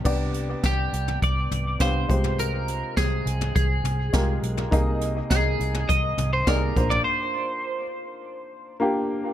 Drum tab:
CC |x---------------|----------------|----------------|----------------|
HH |--x-x-x-x-x-x-x-|x-x-x-x-x-x-x-x-|x-x-x-x-x-x-x-x-|----------------|
SD |----o-------o---|----o-------o---|----o-------o---|----------------|
FT |-------o--o----o|-------o--o----o|-------o--o----o|----------------|
BD |o---o---o---o-o-|----o---o---o---|o---o---o---o-o-|----------------|